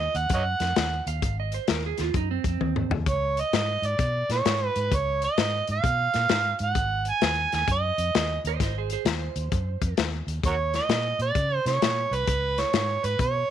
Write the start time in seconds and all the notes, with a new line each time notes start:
Already playing: D#5
0.15 D#2 F#5, closed hi-hat
0.29 F#2, kick, closed hi-hat
0.34 C#5 D#5 F#5
0.60 F2, snare, closed hi-hat
0.76 D#2, snare, closed hi-hat
1.07 D#2 F5, closed hi-hat
1.22 G#1, kick, closed hi-hat
1.40 D#5
1.52 C5, closed hi-hat
1.68 D#2 A#4, snare, closed hi-hat
1.86 G#4
1.97 D#2 F4, snare, closed hi-hat
2.14 F#2 D#4, kick, closed hi-hat
2.31 C4
2.44 F2, kick, closed hi-hat
2.49 C4
2.61 D#2, high tom
2.76 mid tom
2.90 D#2, floor tom
3.06 C#2 C#5, kick, closed hi-hat
3.37 D#5, closed hi-hat
3.53 G#2, snare, closed hi-hat
3.82 G#2, closed hi-hat
3.86 D5
3.99 B2, kick, closed hi-hat
4.29 A#2 C#5, snare, closed hi-hat
4.45 G#2, snare, closed hi-hat
4.67 B4
4.76 G#2, closed hi-hat
4.81 B4
4.91 C#2, kick, closed hi-hat
4.96 C#5
5.22 D#5, closed hi-hat
5.37 G#2, snare, closed hi-hat
5.67 G#2, closed hi-hat
5.73 F5
5.84 B2, kick, closed hi-hat
6.14 A#2, snare, closed hi-hat
6.29 G#2, snare, closed hi-hat
6.59 G#2, closed hi-hat
6.63 F#5
6.75 G#1, kick, closed hi-hat
7.05 closed hi-hat
7.10 G#5
7.21 D#2, snare, closed hi-hat
7.52 D#2 G#5, snare, closed hi-hat
7.67 F#2, kick, closed hi-hat
7.72 D#5
7.98 F2, closed hi-hat
8.15 D#2, snare, closed hi-hat
8.44 D#2 C5, closed hi-hat
8.49 D#5
8.60 G#1 C5 D#5, kick, snare, closed hi-hat
8.78 G#4 C5
8.90 G#4 C5, closed hi-hat
9.05 D#2 C5, snare, closed hi-hat
9.36 D#2, closed hi-hat
9.52 F#2, kick, closed hi-hat
9.82 F2, kick, closed hi-hat
9.97 D#2, snare, closed hi-hat
10.27 D#2, closed hi-hat
10.44 D#2 F#4 A#4 C#5, kick, closed hi-hat
10.74 D#5, snare, closed hi-hat
10.89 A#2, snare, closed hi-hat
11.19 A#2 D5, closed hi-hat
11.35 C#3, kick, closed hi-hat
11.66 C3 C#5, snare, closed hi-hat
11.82 A#2, snare, closed hi-hat
12.11 C2 B4, closed hi-hat
12.28 C#2, kick, closed hi-hat
12.58 C#5, snare, closed hi-hat
12.73 G#2, snare, closed hi-hat
13.04 G#2 B4, closed hi-hat
13.19 B2 C#5, kick, closed hi-hat